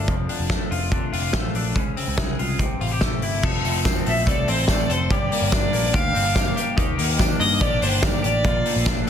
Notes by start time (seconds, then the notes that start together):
Already playing: A3 D4 F4
0.08 F1 F2, kick, closed hi-hat
0.29 D4, open hi-hat
0.40 F1
0.49 A3, kick, snare, closed hi-hat
0.71 F1 F4, open hi-hat
0.92 D4, kick, closed hi-hat
1.13 F1 F4, open hi-hat
1.33 A1 A3, kick, snare
1.55 A#1 D4, open hi-hat
1.76 C#2 C#3, kick, closed hi-hat
1.97 C4, open hi-hat
2.08 C#2
2.17 C2 G#3, kick, snare, closed hi-hat
2.39 C2 F4, open hi-hat
2.59 C2 C3, kick, closed hi-hat
2.81 A1 F4, open hi-hat
2.92 G4
3.01 A3, kick, snare, closed hi-hat
3.22 G1 E4, open hi-hat
3.43 F1 F2 A4, kick, crash
3.64 F1 A3, hi-hat pedal, open hi-hat, tambourine
3.85 C4, kick, snare, hi-hat pedal, open hi-hat, tambourine
4.06 A#1 A3 E5, hi-hat pedal, open hi-hat, tambourine
4.27 C2 A4 D5, kick, hi-hat pedal, open hi-hat, tambourine
4.48 A1 C4 C5, hi-hat pedal, open hi-hat, tambourine
4.68 A1 A3 D5, kick, snare, hi-hat pedal, open hi-hat, tambourine
4.89 F1 A4 C5, hi-hat pedal, open hi-hat, tambourine
5.10 G1 G2 G4 D5, kick, hi-hat pedal, open hi-hat, tambourine
5.32 A#3, hi-hat pedal, open hi-hat, tambourine
5.42 G1
5.52 D4 D5, kick, snare, hi-hat pedal, open hi-hat, tambourine
5.73 A#1 A#3, hi-hat pedal, open hi-hat, tambourine
5.93 D2 G4 F5, kick, hi-hat pedal, open hi-hat, tambourine
6.14 G1 C4, hi-hat pedal, open hi-hat, tambourine
6.25 D4
6.35 A#3, kick, snare, hi-hat pedal, open hi-hat, tambourine
6.56 G4, hi-hat pedal, open hi-hat, tambourine
6.77 D#2 D#3 G4, kick, hi-hat pedal, open hi-hat
6.98 D#2 A#3, hi-hat pedal, open hi-hat
7.19 D4, kick, snare, hi-hat pedal, open hi-hat, tambourine
7.40 G2 A#3 D#5, hi-hat pedal, open hi-hat, tambourine
7.61 A#1 G4 D5, kick, hi-hat pedal, open hi-hat, tambourine
7.82 G1 D4 C5, hi-hat pedal, open hi-hat, tambourine
8.02 G1 A#3 D5, kick, snare, tambourine
8.23 A1 G4 D5, hi-hat pedal, open hi-hat, tambourine
8.44 A#1 A#2 F4, kick, hi-hat pedal, open hi-hat, tambourine
8.65 A3, hi-hat pedal, open hi-hat
8.76 A#1
8.86 D4, kick, snare, hi-hat pedal, open hi-hat, tambourine